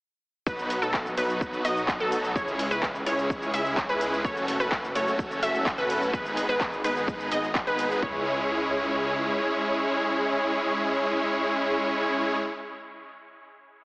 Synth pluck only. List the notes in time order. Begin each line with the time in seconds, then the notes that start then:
0.47 B4
0.82 A4
1.17 B4
1.65 D#5
2.00 A4
2.36 C#5
2.71 B4
3.06 C#5
3.54 E5
3.89 B4
4.25 C#5
4.60 B4
4.95 C#5
5.43 E5
5.78 B4
6.13 B4
6.49 B4
6.84 B4
7.32 D#5
7.67 B4
8.02 C#5